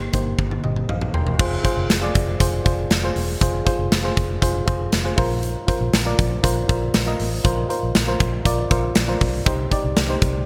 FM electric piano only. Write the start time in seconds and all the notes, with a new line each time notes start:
Already playing: A#3 D#4 G4 C5 D#5
0.13 A#3 D#4 G4 C5
0.64 G4 D#5
0.89 D#5 F5
1.14 A#4 G5 C6
1.39 F4 G#4 C5
1.64 F4 G#4 C5
2.02 F4 G#4 D5
2.40 F4 G#4 C5
2.65 F4 G#4 C5
3.04 F4 G#4 C5
3.41 F4 G#4 C5
3.66 F4 G#4 C5
4.03 F4 G#4 C5
4.42 F4 G#4 C5
4.66 F4 G#4 C5
5.04 F4 G#4 C5
5.17 F4 A#4 C5
5.67 F4 A#4 C5
6.05 F4 A#4 D5
6.43 F4 A#4 C5
6.68 F4 A#4 C5
7.06 F4 A#4 D#5
7.44 F4 A#4 C5
7.69 F4 A#4 C5
8.07 F4 A#4 C5
8.45 F4 A#4 D5
8.70 F4 A#4 C5
9.08 F4 A#4 C5
9.46 D#4 G4 C5
9.71 D#4 G4 D5
10.09 D#4 G4 C5